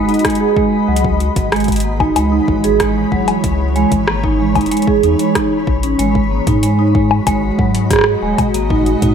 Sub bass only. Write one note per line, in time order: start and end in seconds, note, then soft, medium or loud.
0.88 1.30 C#2 loud
1.36 2.10 G#1 loud
2.16 2.41 C#2 medium
2.48 3.06 G#1 medium
3.12 3.24 G#1 loud
3.44 3.86 C#2 loud
3.92 4.66 G#1 loud
5.03 5.16 E2 loud
5.67 5.85 B1 loud
5.83 5.95 G#1 medium
5.99 6.41 G#1 loud
6.47 7.21 G#2 loud
7.27 7.51 G#1 medium
7.59 8.17 G#2 medium
8.22 8.35 D#1 medium
8.54 8.96 G#1 loud
9.02 9.14 G#2 loud